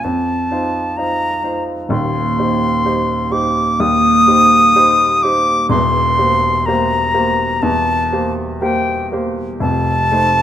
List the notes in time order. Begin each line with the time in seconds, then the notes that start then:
0.04 F2 A5
0.51 D#4 F4 C5
0.97 D#4 F4 C5 A#5
1.43 D#4 F4 C5
1.89 D#1 D#2 C6
2.38 D#4 G4 C5
2.85 D#4 G4 C5
3.31 D#4 G4 C5 D6
3.80 D#2 D#6
4.27 D#4 G4 C5
4.76 D#4 G4 C5
5.23 D#4 G4 C5 D6
5.69 E1 E2 C6
6.18 A#3 G4 C5
6.66 A#3 G4 C5 A#5
7.14 A#3 G4 C5
7.62 E2 A5
8.13 A#3 G4 C5
8.61 A#3 G4 C5 G5
9.12 A#3 G4 C5
9.60 F1 F2 A5
10.12 A3 D#4 C5